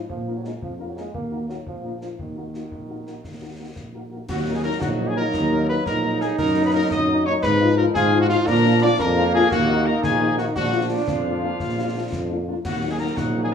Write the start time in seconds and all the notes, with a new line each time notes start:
0.09 A#2 F3, concert bass drum
0.27 A#3 D4 F4 A#4
0.36 F#3
0.44 G#3 A#3 D4 F4 A#4, snare
0.62 F2 F3, concert bass drum
0.79 A#3 D4 F4 A#4
0.89 F#3
0.96 G#3 A#3 D4 F4 A#4, snare
1.14 D#2 A#3, concert bass drum
1.31 A#3 D#4 F#4 A#4
1.48 F#3 A#3 D#4 F#4 A#4, snare
1.66 A#1 F3, concert bass drum
1.83 A#3 D4 F4 A#4
2.01 F3 A#3 D4 F4 A#4, snare
2.18 D#2 D#3, concert bass drum
2.36 A#3 D#4 F#4 A#4
2.54 A#3 D#4 F#4 A#4, snare
2.72 A#1, concert bass drum
2.88 A#3 D#4 F#4 A#4
3.06 A#3 D#4 F#4 A#4, snare
3.24 D#2, concert bass drum, snare
3.42 A#3 D#4 F#4 A#4
3.59 A#3 D#4 F#4 A#4
3.76 A#1, concert bass drum, snare
3.94 A#3 D#4 F#4 A#4
4.11 A#3 D#4 F#4 A#4
4.28 D#2 F#3 A#3 F#4 F#5, concert bass drum, snare, crash
4.46 F#3 A#3 D#4
4.55 G#4 G#5
4.63 F#3 A#3 D#4 A#4 A#5
4.81 A#1 D#4 F#4 F#5, concert bass drum, snare
4.98 F#3 A#3 D#4
5.08 G#4 G#5
5.16 F#3 A#3 D#4 A#4 A#5
5.34 D#2, concert bass drum, snare
5.51 F#3 A#3 D#4
5.68 F#3 A#3 D#4 B4 B5
5.85 A#1 D#4 A#4 A#5, concert bass drum, snare
6.03 F#3 A#3 D#4
6.20 F#3 A#3 D#4 G#4 G#5, snare
6.38 F#2 F#3 D#4 A#4 A#5, concert bass drum, snare, crash
6.55 F#3 A#3 D#4
6.65 B4 B5
6.73 F#3 A#3 D#4 A#4 A#5
6.90 F#2 D#5 D#6, concert bass drum, snare
7.08 F#3 A#3 D#4
7.25 F#3 A#3 D#4 C#5 C#6
7.42 G#2 F3 B4 B5, concert bass drum, snare
7.60 F3 D#4 F4
7.76 F3 D#4 F4 A#4 A#5
7.94 G#2 F4 G#4 G#5, concert bass drum, snare
8.12 F3 D#4 F4
8.21 F#4 F#5
8.29 F3 D#4 F4 F5, snare
8.47 A#2 D4 A#4 A#5, concert bass drum, snare, crash
8.65 A#3 D4 F4
8.82 A#3 D4 F4 D5 D6
8.99 F2 A#3 A#4 A#5, concert bass drum, snare
9.16 A#3 D4 F4
9.33 A#3 D4 F4 G#4 G#5
9.51 D#2 D#3 D#4 F#4 F#5, concert bass drum, snare
9.68 A#3 D#4
9.86 A#3 D#4 A#4 A#5
10.03 A#1 G#4 G#5, concert bass drum, snare
10.21 A#3 D#4
10.38 A#3 D#4 F#4 F#5, snare
10.55 A#1 F3 D4 F#4 F#5, concert bass drum, snare, crash
10.73 A#3 D4 F4
10.90 A#3 D4 F4
11.07 F2 F4 F5, concert bass drum, snare
11.25 A#3 D4 F4
11.42 A#3 D4 F4
11.60 A#1, concert bass drum, snare
11.77 A#3 D4 F4
11.94 A#3 D4 F4
12.12 F2, concert bass drum, snare
12.29 A#3 D4 F4
12.47 A#3 D4 F4
12.64 D#2 F#3 D#4 F#4 F#5, concert bass drum, snare, crash
12.82 A#3 D#4 F#4
12.91 G#4 G#5
12.99 A#3 D#4 F#4 A#4 A#5
13.17 A#1 A#3 F#4 F#5, concert bass drum, snare
13.34 A#3 D#4 F#4
13.43 G#4 G#5